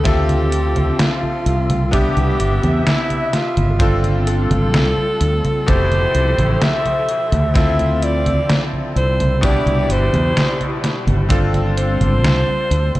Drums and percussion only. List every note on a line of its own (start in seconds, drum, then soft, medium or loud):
0.05 kick loud
0.05 snare medium
0.05 closed hi-hat medium
0.05 high conga soft
0.29 closed hi-hat soft
0.29 high conga soft
0.52 closed hi-hat medium
0.76 closed hi-hat medium
0.76 high conga medium
0.99 snare loud
0.99 closed hi-hat medium
0.99 high conga soft
1.23 high conga soft
1.46 closed hi-hat medium
1.70 closed hi-hat medium
1.70 high conga medium
1.93 kick loud
1.93 closed hi-hat medium
1.93 high conga soft
2.17 closed hi-hat soft
2.17 high conga soft
2.40 closed hi-hat medium
2.63 closed hi-hat medium
2.63 high conga medium
2.87 snare loud
2.87 closed hi-hat medium
2.87 high conga soft
3.10 closed hi-hat soft
3.10 high conga soft
3.33 snare medium
3.33 closed hi-hat medium
3.57 closed hi-hat medium
3.57 high conga medium
3.80 kick loud
3.80 closed hi-hat medium
3.80 high conga soft
4.04 closed hi-hat soft
4.04 high conga soft
4.27 closed hi-hat medium
4.51 closed hi-hat medium
4.51 high conga medium
4.74 snare loud
4.74 closed hi-hat medium
4.74 high conga soft
4.98 high conga soft
5.21 closed hi-hat medium
5.45 closed hi-hat medium
5.45 high conga medium
5.68 kick loud
5.68 closed hi-hat medium
5.68 high conga soft
5.92 closed hi-hat soft
5.92 high conga soft
6.15 closed hi-hat medium
6.38 closed hi-hat medium
6.38 high conga medium
6.62 snare loud
6.62 closed hi-hat medium
6.62 high conga soft
6.86 closed hi-hat soft
6.86 high conga soft
7.09 closed hi-hat medium
7.32 closed hi-hat medium
7.32 high conga medium
7.56 kick loud
7.56 snare medium
7.56 closed hi-hat medium
7.56 high conga soft
7.79 closed hi-hat soft
7.79 high conga soft
8.03 closed hi-hat medium
8.26 closed hi-hat soft
8.26 high conga medium
8.50 snare loud
8.50 closed hi-hat medium
8.50 high conga soft
8.73 high conga soft
8.97 closed hi-hat medium
9.20 closed hi-hat medium
9.20 high conga medium
9.43 kick loud
9.43 closed hi-hat medium
9.43 high conga soft
9.67 closed hi-hat soft
9.67 high conga soft
9.90 closed hi-hat medium
10.14 closed hi-hat medium
10.14 high conga medium
10.37 snare loud
10.37 closed hi-hat medium
10.37 high conga soft
10.61 closed hi-hat soft
10.61 high conga soft
10.84 snare medium
10.84 closed hi-hat medium
11.08 closed hi-hat medium
11.08 high conga medium
11.30 kick loud
11.30 closed hi-hat medium
11.30 high conga soft
11.54 closed hi-hat soft
11.54 high conga soft
11.77 closed hi-hat medium
12.01 closed hi-hat medium
12.01 high conga medium
12.24 snare loud
12.24 closed hi-hat medium
12.24 high conga soft
12.48 high conga soft
12.71 closed hi-hat medium
12.95 closed hi-hat medium
12.95 high conga medium